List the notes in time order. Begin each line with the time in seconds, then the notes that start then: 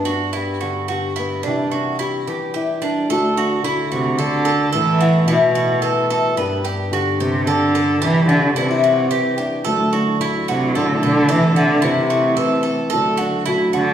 Already playing: G2 B3
0.05 D4 F#4
0.33 E4 G4
0.61 D3 D4 F#4
0.88 F#4 G4
1.16 B3 E4
1.43 C3 E3 G3 D4
1.47 D4 E4
1.72 D4 F#4
1.99 E4 G4
2.27 E3 D4 G4
2.54 E4 G4
2.82 G3 D4
3.09 D2 A3 D4 F#4 A4
3.37 D4 F#4
3.64 D3 E4 F#4
3.92 C3 F#4
4.19 D3 A4
4.45 D4 A4
4.73 A2 E3 B3 E4 A4
5.00 E4 F#4
5.28 B2 E3 E4
5.55 F#4
5.82 E3 A4
6.10 E4 A4
6.36 G2 B3 D4 G4 B4
6.65 D4 G4
6.91 D3 F#4 G4
7.19 C3 G4
7.47 D3 A4
7.75 D4 A4
8.02 C3 E3 G3 D4 E4 G4
8.29 D3 D4 F#4
8.56 C3 E3 D4 E4
8.71 E4
8.84 F#4
9.11 E3 G4
9.38 D4 G4
9.64 D2 D3 F#3 A3 D4 E4 F#4 A4
9.93 D4 F#4
10.20 D3 E4 F#4
10.48 C3 F#4
10.75 A2 D3 A4
11.02 B2 D3 A4
11.28 C3 E3 A3 C4 E4 A4
11.56 D3 C4 F#4
11.82 C3 E3 E4
12.10 F#4
12.37 E3 A4
12.63 C4 A4
12.90 D2 D3 F#3 A3 F#4 A4
12.94 D4 F#4
13.17 D4 F#4
13.46 D3 E4 F#4
13.73 D3 F#4